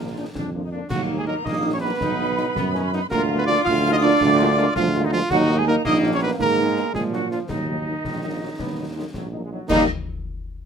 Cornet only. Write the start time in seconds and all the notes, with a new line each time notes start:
Already playing: A#4
0.90 F#4
1.18 G#4
1.27 A#4
1.44 D#5
1.73 C#5
1.80 B4
3.10 A#4
3.38 B4
3.46 D5
3.64 F5
3.93 D#5
4.02 D5
4.76 F4
5.05 D#4
5.13 F4
5.31 F#4
5.59 G#4
5.68 A#4
5.85 D#5
6.14 C#5
6.23 B4
6.41 A#4
6.95 G#4
7.13 F#4
7.31 F4
7.49 D#4
9.69 D#4